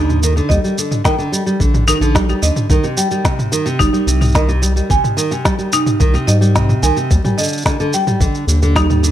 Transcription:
Already playing: D#2 D3 D#4
0.09 mid tom, shaker
0.23 D#3, shaker
0.37 D3, shaker
0.49 D#2 G3 D#5, kick, shaker
0.64 G3, shaker
0.78 D3, shaker
0.92 mid tom, shaker
1.04 D#3 G5, kick, snare, shaker
1.18 D3, shaker
1.32 G3, shaker
1.46 G3, shaker
1.60 A#1 D3, kick, shaker
1.74 mid tom, shaker
1.88 D#3 D#4, shaker
2.01 A#1 D3, shaker
2.15 G3, kick, snare, shaker
2.29 G3, shaker
2.42 D#2 D3 D#5, shaker
2.56 mid tom, shaker
2.69 C2 D#3, kick, shaker
2.84 C3, shaker
2.97 G3 G5, shaker
3.11 G3, shaker
3.25 C3, kick, snare, shaker
3.39 mid tom, shaker
3.52 D#3, shaker
3.66 C3, shaker
3.79 G1 G3 D#4, kick, shaker
3.93 G3, shaker
4.07 C2 C3, shaker
4.21 mid tom, shaker
4.25 shaker
4.28 shaker
4.32 D#3 D#5, kick, snare, shaker
4.35 shaker
4.49 C3, shaker
4.62 G3, shaker
4.76 G3, shaker
4.90 G#1 C3 G#5, kick, shaker
5.04 mid tom, shaker
5.17 D#3, shaker
5.31 C3, shaker
5.45 G3, kick, snare, shaker
5.59 G3, shaker
5.73 C3 D#4, shaker
5.86 mid tom, shaker
6.00 C2 D#3, kick, shaker
6.14 C3, shaker
6.27 G#2 G3 D#5, shaker
6.41 G3, shaker
6.55 C3, kick, snare, shaker
6.69 mid tom, shaker
6.83 C2 D#3 G#5, shaker
6.97 C3, shaker
7.11 D#2 G3, kick, shaker
7.25 G3, mid tom, shaker
7.38 D3 D#5, shaker
7.43 shaker
7.48 shaker
7.53 shaker
7.57 shaker
7.62 kick, shaker
7.66 D3, snare, shaker
7.80 D3, shaker
7.93 G3 G5, shaker
8.07 G3, mid tom, shaker
8.20 A#1 D3, kick, shaker
8.35 shaker
8.47 D#2 D3, shaker
8.62 D3, shaker
8.76 G3 D#4, kick, snare, shaker
8.90 G3, mid tom, shaker
9.03 D3, shaker

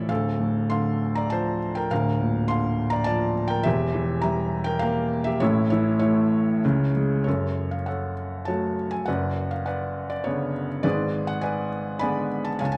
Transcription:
Already playing: A1 A2 E3 C#4 E4 F4 A4 A#4 C5 C#5 D5 E5
0.08 D1 D2 A4 F5
0.40 A2
0.70 D3 F5 C6
1.15 D5 A#5
1.30 F3 C5 A5
1.75 A#4 G5
1.91 D1 D2 A#4 F5
2.20 A#2
2.48 D3 F5 C6
2.90 D5 A#5
3.04 F3 D5 A5
3.48 A#4 G5
3.63 E1 E2 G4 E5
3.95 E3
4.22 G3 E5 A#5
4.64 A#4 G5
4.79 A#3 A#4 F5
5.24 G4 E5
5.40 A1 A2 E4 C#5
5.70 E3 E4 C#5
5.99 A3 E4 C#5
6.65 C#2 C#3
6.96 G#3
7.24 F#1 F#2 G#4 A4 C#5
7.71 F5
7.86 A4 C#5 F#5
8.45 F#3 A3 F#4 C#5 A5
8.91 G#5
9.06 F#1 F#2 B4 D5 F#5
9.51 F5
9.66 B4 D5 F#5
10.10 D5
10.24 C#3 D3 B3 C#5
10.83 G#1 G#2 G#4 B4 D5
11.27 F#5
11.41 B4 D5 G#5
11.99 D3 G#3 B3 D5 G#5 B5
12.45 A5
12.59 C#2 C#5 F5 G#5
12.65 A5
12.72 G#5

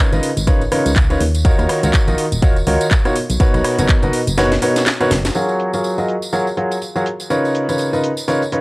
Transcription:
0.12 G#1 C#3 D#4 F4 A#4 B4 D#5, closed hi-hat, tambourine
0.23 open hi-hat
0.37 G#1, closed hi-hat, tambourine
0.47 C#3 D#4 F4 A#4 B4 C#5, kick, closed hi-hat
0.61 closed hi-hat, tambourine
0.72 C#3 D#4 F4 A#4 B4 C#5, cross-stick, open hi-hat
0.86 C#2, closed hi-hat, tambourine
0.96 kick, clap, closed hi-hat
1.10 C#3 D#4 F4 A#4 B4 C#5, closed hi-hat, tambourine
1.20 D#2, open hi-hat
1.35 closed hi-hat, tambourine
1.45 D#3 D#4 F4 F#4 A#4 C#5, kick, closed hi-hat, tambourine
1.59 D#2, cross-stick, closed hi-hat, tambourine
1.69 cross-stick, open hi-hat
1.83 C#2 D#3 D#4 F4 F#4 A#4 C#5, closed hi-hat, tambourine
1.94 kick, clap, closed hi-hat, tambourine
2.08 A#1 D#3 D#4 F4 F#4 A#4 D#5, closed hi-hat, tambourine
2.18 open hi-hat
2.32 D#1, closed hi-hat, tambourine
2.42 D#3 D#4 F4 F#4 A#4 C#5, kick, closed hi-hat
2.56 closed hi-hat, tambourine
2.67 C#2 D#3 D#4 F4 F#4 A#4 C#5, open hi-hat
2.81 closed hi-hat, tambourine
2.91 kick, clap, closed hi-hat, tambourine
3.05 B2 D#4 F4 F#4 A#4 C#5, cross-stick, closed hi-hat, tambourine
3.16 open hi-hat
3.30 B1, closed hi-hat, tambourine
3.40 B2 D#4 F#4 A#4 B4 C#5, kick, closed hi-hat
3.54 B1, cross-stick, closed hi-hat, tambourine
3.64 cross-stick, open hi-hat
3.78 F#1 B2 D#4 F#4 A#4 B4 C#5, closed hi-hat, tambourine
3.89 kick, clap, closed hi-hat, tambourine
4.02 F#1 B2 D#4 F#4 A#4 B4 D#5, closed hi-hat, tambourine
4.13 open hi-hat
4.27 F#1, closed hi-hat, tambourine
4.38 B2 D#4 F#4 A#4 B4 C#5, snare, closed hi-hat, tambourine
4.52 snare, closed hi-hat, tambourine
4.62 B2 D#4 F#4 A#4 B4 C#5, open hi-hat
4.76 snare, closed hi-hat, tambourine
4.86 snare, clap, closed hi-hat, tambourine
5.00 B2 D#4 F#4 A#4 B4 C#5, closed hi-hat, tambourine
5.11 F#1, snare, open hi-hat
5.25 snare, closed hi-hat, tambourine
5.35 F#3 F4 F#4 G#4 A#4 C#5, closed hi-hat, tambourine, cabasa
5.49 closed hi-hat, tambourine, cabasa
5.60 closed hi-hat, cabasa
5.73 F#3 F4 F#4 G#4 A#4 C#5, closed hi-hat, tambourine, cabasa
5.84 closed hi-hat, tambourine, cabasa
5.98 F#3 F4 F#4 G#4 A#4 D#5, closed hi-hat, tambourine, cabasa
6.08 closed hi-hat, cabasa
6.22 closed hi-hat, tambourine, cabasa
6.33 F#3 F4 F#4 G#4 A#4 C#5, closed hi-hat, tambourine, cabasa
6.47 closed hi-hat, tambourine, cabasa
6.57 F#3 F4 F#4 G#4 A#4 C#5, closed hi-hat, cabasa
6.71 closed hi-hat, tambourine, cabasa
6.82 closed hi-hat, tambourine, cabasa
6.95 F#3 F4 F#4 G#4 A#4 C#5, closed hi-hat, tambourine, cabasa
7.06 closed hi-hat, cabasa
7.20 closed hi-hat, tambourine, cabasa
7.30 C#3 D#4 F4 A#4 B4 C#5, closed hi-hat, tambourine, cabasa
7.44 closed hi-hat, tambourine, cabasa
7.55 closed hi-hat, cabasa
7.69 C#3 D#4 F4 A#4 B4 C#5, closed hi-hat, tambourine, cabasa
7.78 closed hi-hat, tambourine, cabasa
7.93 C#3 D#4 F4 A#4 B4 D#5, closed hi-hat, tambourine, cabasa
8.04 closed hi-hat, cabasa
8.17 closed hi-hat, tambourine, cabasa
8.28 C#3 D#4 F4 A#4 B4 C#5, closed hi-hat, tambourine, cabasa
8.42 closed hi-hat, tambourine, cabasa
8.52 C#3 D#4 F4 A#4 B4 C#5, closed hi-hat, cabasa

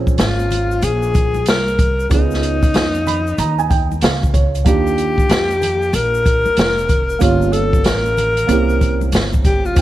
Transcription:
Already playing: A#1 A#3 C4 C#4 F4 G#4
0.07 kick, shaker
0.18 G#1 F4, snare, closed hi-hat, shaker
0.39 shaker
0.51 closed hi-hat, low conga, shaker
0.71 shaker
0.82 A#1 G#4, closed hi-hat, shaker
1.03 shaker
1.14 kick, closed hi-hat, low conga, shaker
1.34 high conga, shaker
1.46 C2 A#4, snare, closed hi-hat, high conga, shaker
1.68 shaker
1.79 kick, closed hi-hat, low conga, shaker
2.00 shaker
2.09 C#2 B3 C#4 D#4 F4, kick, closed hi-hat, shaker
2.13 D#4 G#4
2.31 snare, shaker
2.43 closed hi-hat, shaker
2.63 kick, closed hi-hat, shaker
2.74 F2, snare, closed hi-hat, shaker
2.94 shaker
3.07 B5, closed hi-hat, low conga, shaker
3.27 shaker
3.38 D#2 A#5, closed hi-hat, shaker
3.59 G#5, shaker
3.70 G5, kick, closed hi-hat, low conga, shaker
3.92 high conga, shaker
4.01 C#2 F5, snare, closed hi-hat, high conga, shaker
4.23 kick, shaker
4.34 C#5, kick, closed hi-hat, low conga, shaker
4.55 closed hi-hat, shaker
4.64 D#2 A#3 D4 D#4 F4 G4, kick, closed hi-hat, shaker
4.69 G4
4.87 shaker
4.98 closed hi-hat, shaker
5.18 kick, shaker
5.29 F2, snare, closed hi-hat, shaker
5.51 shaker
5.62 closed hi-hat, low conga, shaker
5.82 shaker
5.93 A#1 A#4, closed hi-hat, shaker
6.14 shaker
6.26 kick, closed hi-hat, low conga, shaker
6.46 muted upright bass stroke, high conga, shaker
6.57 F1, snare, closed hi-hat, high conga, shaker
6.78 shaker
6.89 kick, closed hi-hat, low conga, shaker
7.09 shaker
7.19 G1 A#3 C#4 F4 G4, kick, closed hi-hat, shaker
7.23 C#5
7.42 shaker
7.53 A4, closed hi-hat, shaker
7.73 kick, shaker
7.84 A1 A#4, snare, closed hi-hat, shaker
8.05 shaker
8.17 closed hi-hat, low conga, shaker
8.37 closed hi-hat, shaker
8.47 C2 A#3 C4 C#4 E4, closed hi-hat, shaker
8.51 G4
8.70 shaker
8.81 kick, closed hi-hat, low conga, shaker
9.01 high conga, shaker
9.12 G1, snare, closed hi-hat, high conga, shaker
9.33 kick, shaker
9.45 G4, kick, closed hi-hat, low conga, shaker
9.65 F4, shaker
9.74 F1 G3 C4 D#4 F4, kick, closed hi-hat, shaker

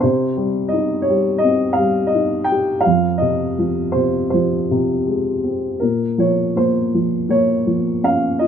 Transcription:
0.01 C3 C5
0.37 G3
0.69 D#5
0.73 D#4
1.02 C#5
1.09 G3
1.38 D#5
1.44 C4
1.73 F5
1.78 G3
2.07 D#5
2.14 D#4
2.44 G5
2.52 G4
2.81 F5
2.86 F2
3.18 C3 D#5
3.59 F3
3.92 C3 C5
4.30 F3 C5
4.71 C3
5.07 G#3
5.44 C4
5.80 A#2 A#4
6.18 F3 C#5
6.56 A#3 C5
6.94 F3
7.29 A#3 C#5
7.66 F3
8.03 C#4 F5
8.39 F4 D#5

